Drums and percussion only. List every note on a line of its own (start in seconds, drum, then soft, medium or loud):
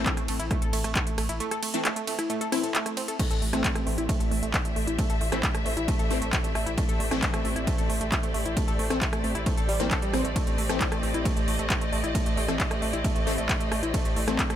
0.06 kick loud
0.06 clap loud
0.06 closed hi-hat medium
0.17 cross-stick medium
0.17 closed hi-hat medium
0.28 open hi-hat medium
0.28 ride medium
0.40 closed hi-hat medium
0.51 kick loud
0.51 cross-stick medium
0.51 closed hi-hat medium
0.62 closed hi-hat medium
0.73 open hi-hat loud
0.73 ride medium
0.84 cross-stick medium
0.84 closed hi-hat medium
0.95 kick loud
0.95 clap loud
0.95 closed hi-hat medium
1.07 closed hi-hat medium
1.18 cross-stick medium
1.18 open hi-hat medium
1.18 ride medium
1.29 closed hi-hat medium
1.40 closed hi-hat medium
1.51 cross-stick medium
1.51 closed hi-hat medium
1.63 open hi-hat loud
1.63 ride medium
1.74 closed hi-hat medium
1.85 cross-stick medium
1.85 clap loud
1.85 closed hi-hat medium
1.96 closed hi-hat medium
2.07 open hi-hat medium
2.07 ride medium
2.19 cross-stick medium
2.19 closed hi-hat medium
2.30 closed hi-hat medium
2.41 closed hi-hat medium
2.52 cross-stick medium
2.52 open hi-hat loud
2.52 ride medium
2.64 closed hi-hat medium
2.75 clap loud
2.75 closed hi-hat medium
2.86 cross-stick medium
2.86 closed hi-hat medium
2.97 open hi-hat medium
2.97 ride medium
3.08 closed hi-hat medium
3.19 kick loud
3.19 closed hi-hat medium
3.19 crash loud
3.19 ride medium
3.31 closed hi-hat medium
3.42 open hi-hat loud
3.53 cross-stick loud
3.53 closed hi-hat medium
3.64 kick loud
3.64 clap loud
3.64 closed hi-hat medium
3.64 ride medium
3.75 cross-stick medium
3.75 closed hi-hat medium
3.87 open hi-hat loud
3.98 closed hi-hat medium
4.09 kick loud
4.09 closed hi-hat medium
4.09 ride medium
4.20 closed hi-hat medium
4.31 open hi-hat loud
4.43 closed hi-hat medium
4.54 kick loud
4.54 clap loud
4.54 closed hi-hat medium
4.54 ride medium
4.65 closed hi-hat medium
4.76 open hi-hat medium
4.87 closed hi-hat medium
4.99 kick loud
4.99 closed hi-hat medium
4.99 ride medium
5.10 closed hi-hat medium
5.21 open hi-hat loud
5.32 cross-stick medium
5.32 closed hi-hat medium
5.43 kick loud
5.43 clap loud
5.43 closed hi-hat medium
5.43 ride medium
5.55 cross-stick medium
5.55 closed hi-hat medium
5.66 open hi-hat loud
5.77 closed hi-hat medium
5.88 kick loud
5.88 closed hi-hat medium
5.88 ride medium
5.99 closed hi-hat medium
6.10 open hi-hat loud
6.22 closed hi-hat medium
6.33 kick loud
6.33 clap loud
6.33 closed hi-hat medium
6.33 ride medium
6.44 closed hi-hat medium
6.55 cross-stick medium
6.55 open hi-hat loud
6.67 closed hi-hat medium
6.78 kick loud
6.78 closed hi-hat medium
6.78 ride medium
6.89 closed hi-hat medium
7.00 open hi-hat loud
7.11 cross-stick medium
7.11 closed hi-hat medium
7.22 kick loud
7.22 clap loud
7.22 closed hi-hat medium
7.22 ride medium
7.34 cross-stick loud
7.34 closed hi-hat medium
7.45 open hi-hat loud
7.56 closed hi-hat medium
7.67 kick loud
7.67 closed hi-hat medium
7.67 ride medium
7.78 closed hi-hat medium
7.90 open hi-hat loud
8.01 closed hi-hat medium
8.12 kick loud
8.12 clap loud
8.12 closed hi-hat medium
8.12 ride medium
8.23 closed hi-hat medium
8.34 open hi-hat loud
8.46 closed hi-hat medium
8.57 kick loud
8.57 closed hi-hat medium
8.57 ride medium
8.68 closed hi-hat medium
8.79 open hi-hat loud
8.90 cross-stick loud
8.90 closed hi-hat medium
9.02 kick loud
9.02 clap loud
9.02 closed hi-hat medium
9.02 ride medium
9.13 cross-stick loud
9.13 closed hi-hat soft
9.24 open hi-hat loud
9.35 closed hi-hat medium
9.46 kick loud
9.46 closed hi-hat medium
9.46 ride medium
9.57 closed hi-hat medium
9.69 open hi-hat loud
9.80 closed hi-hat medium
9.91 kick loud
9.91 clap loud
9.91 closed hi-hat medium
9.91 ride medium
10.02 closed hi-hat medium
10.14 cross-stick medium
10.14 open hi-hat loud
10.25 closed hi-hat medium
10.36 kick loud
10.36 closed hi-hat medium
10.36 ride medium
10.47 closed hi-hat medium
10.58 open hi-hat loud
10.69 cross-stick loud
10.69 closed hi-hat medium
10.81 kick loud
10.81 clap loud
10.81 closed hi-hat medium
10.81 ride medium
10.92 cross-stick medium
10.92 closed hi-hat medium
11.03 open hi-hat medium
11.14 closed hi-hat medium
11.25 kick loud
11.25 closed hi-hat medium
11.25 ride medium
11.37 closed hi-hat soft
11.48 open hi-hat loud
11.59 closed hi-hat medium
11.70 kick loud
11.70 clap loud
11.70 closed hi-hat medium
11.70 ride medium
11.81 closed hi-hat medium
11.93 open hi-hat loud
12.04 closed hi-hat soft
12.15 kick loud
12.15 closed hi-hat medium
12.15 ride medium
12.26 closed hi-hat medium
12.37 open hi-hat loud
12.48 cross-stick loud
12.48 closed hi-hat medium
12.60 kick loud
12.60 clap loud
12.60 closed hi-hat medium
12.60 ride medium
12.71 cross-stick medium
12.71 closed hi-hat soft
12.82 open hi-hat medium
12.93 closed hi-hat soft
13.04 kick loud
13.04 closed hi-hat medium
13.04 ride medium
13.16 closed hi-hat soft
13.27 open hi-hat loud
13.38 closed hi-hat soft
13.49 kick loud
13.49 clap loud
13.49 closed hi-hat medium
13.49 ride medium
13.60 closed hi-hat medium
13.72 cross-stick loud
13.72 open hi-hat loud
13.83 closed hi-hat medium
13.94 kick loud
13.94 closed hi-hat medium
13.94 ride medium
14.05 closed hi-hat medium
14.16 open hi-hat loud
14.28 cross-stick loud
14.28 closed hi-hat medium
14.39 kick loud
14.39 clap loud
14.39 closed hi-hat medium
14.39 ride medium
14.50 cross-stick medium
14.50 closed hi-hat medium